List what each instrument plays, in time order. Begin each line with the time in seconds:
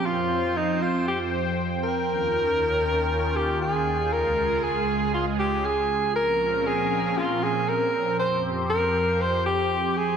Already playing: analog synth pad F3 C4
0.06 analog synth pad F2 C5 G5, alto saxophone F4
0.57 alto saxophone D#4
0.82 alto saxophone F4
1.08 alto saxophone G4
1.83 alto saxophone A#4
2.08 analog synth pad D#2 D#3 C#4 F4
3.36 alto saxophone G4
3.61 alto saxophone G#4
4.12 analog synth pad C#2 C#3 G#3 G#4, alto saxophone A#4
4.63 alto saxophone G#4
5.14 alto saxophone F4
5.39 alto saxophone G4
5.65 alto saxophone G#4
6.16 analog synth pad A#2 F3 C4 C#4 A#4, alto saxophone A#4
6.67 alto saxophone G#4
7.17 alto saxophone F4
7.43 alto saxophone G#4
7.68 alto saxophone A#4
8.19 analog synth pad F2 F3 G4 C5, alto saxophone C5
8.70 alto saxophone A#4
9.21 alto saxophone C5
9.46 alto saxophone G4
9.97 alto saxophone G#4